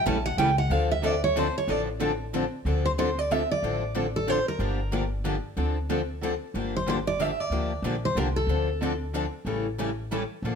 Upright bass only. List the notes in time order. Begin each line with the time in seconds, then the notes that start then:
0.06 A#1
0.37 C#2
0.70 D2
1.68 A1
2.65 D2
3.63 A1
4.59 G1
5.57 D2
6.54 G1
7.50 D2
7.82 A#1
8.15 C2
8.47 D2
9.45 A1
10.42 A#1